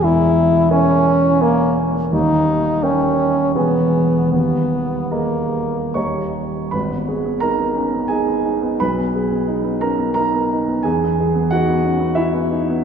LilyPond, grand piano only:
\new Staff \with { instrumentName = "Grand piano" } { \time 3/4 \key gis \minor \tempo 4 = 87 << { r2. | r2. | r2 <cis'' cis'''>4 | <b' b''>4 <ais' ais''>4 <gis' gis''>4 |
<b' b''>4. <ais' ais''>8 <ais' ais''>4 | <gis' gis''>4 <fis' fis''>4 <e' e''>4 | } \\ { <e,, e,>4 <ais' cis'' gis''>4 <ais' cis'' gis''>4 | <dis,, dis,>4 <ais' cis'' g''>4 <e,, e, gis' b' gis''>4 | <dis,, dis,>4 <gis' dis'' ais''>4 <dis,, dis, g' dis'' ais''>4 | gis,,16 b16 gis'16 b16 dis'16 b16 cis'16 b16 dis'16 b16 dis'16 b16 |
b,,16 b16 gis'16 b16 dis'16 b16 cis'16 b16 dis'16 b16 dis'16 b16 | e,16 b16 gis'16 b16 dis'16 b16 cis'16 b16 dis'16 b16 dis'16 b16 | } >> }